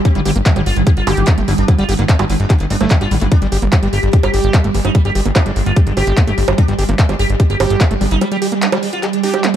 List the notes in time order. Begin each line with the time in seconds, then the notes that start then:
Already playing: G3
0.05 G3 C4, kick, closed hi-hat
0.15 G1 D3 G3, closed hi-hat
0.25 G1 D3 G4, open hi-hat
0.36 G1 A#3, closed hi-hat
0.46 D3, kick, clap, closed hi-hat
0.56 G1 D3 G3, closed hi-hat, high bongo
0.66 G1 F4, open hi-hat
0.76 G1 D3, closed hi-hat
0.87 D3 G4, kick, closed hi-hat
0.97 G1 F4, closed hi-hat
1.07 G1 D3 G4, open hi-hat, high bongo
1.17 G1 D3, closed hi-hat
1.27 D3 G3, kick, clap, closed hi-hat
1.38 G1 A3, closed hi-hat
1.48 G1 D3 G3, open hi-hat
1.58 G1 D4, closed hi-hat
1.68 D3 G3, kick, closed hi-hat, high bongo
1.78 G1 G3 F4, closed hi-hat
1.89 G1 D3 G4, open hi-hat
1.99 G1 D3 A#3, closed hi-hat
2.09 C4, kick, clap, closed hi-hat
2.19 G1 D3 G3, closed hi-hat, high bongo
2.30 G1 D3, open hi-hat
2.40 G1 D4, closed hi-hat
2.50 D3 G4, kick, clap, closed hi-hat
2.60 G1 D3, closed hi-hat
2.70 G1 G3 D4, open hi-hat
2.81 G1 D3 A3, closed hi-hat, high bongo
2.91 D3 G3, kick, clap, closed hi-hat
3.01 G1 F4 G4, closed hi-hat
3.11 A1 D3 G3, open hi-hat
3.21 G1 D3 A3, closed hi-hat
3.32 G3 D4, kick, closed hi-hat
3.42 G1 G3, closed hi-hat
3.52 G1 G3 G4, open hi-hat
3.62 G1 A#3, closed hi-hat
3.72 G3, kick, clap, closed hi-hat, high bongo
3.83 G1 G3, closed hi-hat
3.93 G1 G4, open hi-hat
4.03 G1 G3, closed hi-hat
4.13 G3 G4, kick, closed hi-hat
4.23 G1 G4, closed hi-hat, high bongo
4.34 G1 G3 G4, open hi-hat
4.44 G1 G3
4.54 G3, kick, clap, closed hi-hat
4.64 G1 A3, closed hi-hat
4.74 G1 G3, open hi-hat
4.85 G1 D#4, closed hi-hat, high bongo
4.95 G3, kick, closed hi-hat
5.05 G1 G3 G4, closed hi-hat
5.15 G1 G3 G4, open hi-hat
5.25 G1 G3 A#3, closed hi-hat
5.36 D4, kick, clap, closed hi-hat, high bongo
5.46 G1 G3, closed hi-hat
5.56 G1 G3, open hi-hat
5.66 G1 F4, closed hi-hat
5.76 G3 G4, kick, closed hi-hat
5.87 G1 G3, closed hi-hat
5.97 G1 G4, open hi-hat, high bongo
6.07 G1 G3, closed hi-hat
6.17 G3, kick, clap, closed hi-hat
6.28 G1 A3 G4, closed hi-hat
6.38 G1 G3, open hi-hat
6.48 G1 G3, closed hi-hat, high bongo
6.58 G3 D4, kick, closed hi-hat
6.68 G1 G3, closed hi-hat
6.78 G1 G3 G4, open hi-hat
6.89 G1 A#3, closed hi-hat
6.99 G3, kick, clap, closed hi-hat
7.09 G1 G3, closed hi-hat, high bongo
7.19 G1 G4, open hi-hat
7.30 G1 G3, closed hi-hat
7.40 G3 G4, kick, closed hi-hat
7.50 G1 G4, closed hi-hat
7.60 G1 G3 G4, open hi-hat, high bongo
7.70 G1 G3, closed hi-hat
7.81 G3, kick, clap, closed hi-hat
7.91 G1 A3, closed hi-hat
8.01 G1 G3, open hi-hat
8.11 G1 D#4, closed hi-hat
8.21 G3, closed hi-hat, high bongo
8.32 G3 G4, closed hi-hat
8.42 G3 G4, open hi-hat
8.52 G3 A#3, closed hi-hat
8.62 D4, clap, closed hi-hat
8.72 G3, closed hi-hat, high bongo
8.83 G3, open hi-hat
8.93 F4, closed hi-hat
9.03 G3 G4, clap, closed hi-hat
9.13 G3, closed hi-hat
9.23 D4 G4, open hi-hat
9.34 G3, closed hi-hat, high bongo
9.44 G3, clap, closed hi-hat